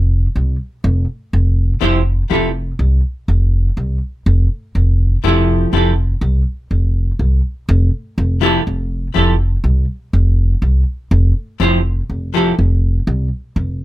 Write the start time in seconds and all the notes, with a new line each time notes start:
Already playing: F1
0.36 C2
0.84 F1
1.33 F1
1.81 F1 F3 E4 G4 C5
2.30 F1 F3 E4 G4 A4
2.79 C2
3.28 F1
3.77 C2
4.26 F1
4.75 F1
5.24 F1 F3 E4 G4 A4
5.73 F1 F3 E4 G4 A4
6.21 C2
6.71 F1
7.19 C2
7.69 F1
8.18 F1
8.41 F3 E4 G4 A4
8.67 F1
9.14 F1 F3 E4 G4 A4
9.64 C2
10.13 F1
10.62 C2
11.11 F1
11.60 F1 F3 E4 G4 C5
12.10 F1
12.34 F3 E4 G4 A4
12.59 F1
13.07 C2
13.56 F1